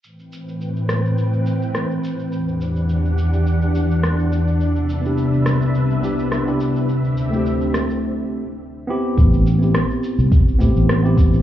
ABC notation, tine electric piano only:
X:1
M:4/4
L:1/16
Q:"Swing 16ths" 1/4=105
K:Ador
V:1 name="Tine electric piano"
z16 | z16 | z3 [B,DEG]6- [B,DEG] [B,DEG]3 [B,DEG]3 | z3 [A,CEG]8 z3 [B,CEG]2- |
[B,CEG]2 z [B,CEG]6- [B,CEG] [B,CEG]3 [B,CEG]3 |]